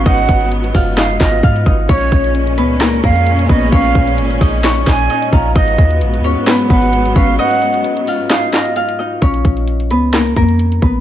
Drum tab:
HH |xxxxxxo-xxxxxx--|xxxxxxx-xxxxxx--|xxxxxxo-xxxxxx--|xxxxxxx-xxxxxx--|
CP |--------x-x-----|--------x-------|--------x-x-----|--------x-------|
SD |--------o-o-----|--------o-------|--------o-o-----|--------o-------|
BD |o-o---o---o-o-o-|o-o-------o---o-|o-o---o---o---o-|o-o-------o---o-|

HH |xxxxxxo-xxxxxx--|xxxxxxx-xxxxxx--|
CP |--------x-x-----|--------x-------|
SD |--------o-o-----|--------o-------|
BD |----------------|o-o-------o---o-|